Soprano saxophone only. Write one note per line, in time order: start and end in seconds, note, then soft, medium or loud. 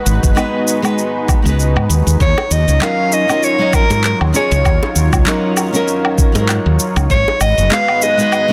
2.21 2.54 C#5 medium
2.52 2.85 D#5 medium
2.83 3.15 F5 loud
3.13 3.46 D#5 loud
3.44 3.76 C#5 loud
3.75 4.05 A#4 medium
4.05 4.19 A#4 medium
4.36 4.92 C#5 medium
7.11 7.39 C#5 loud
7.41 7.70 D#5 medium
7.73 8.04 F5 loud
8.03 8.53 D#5 loud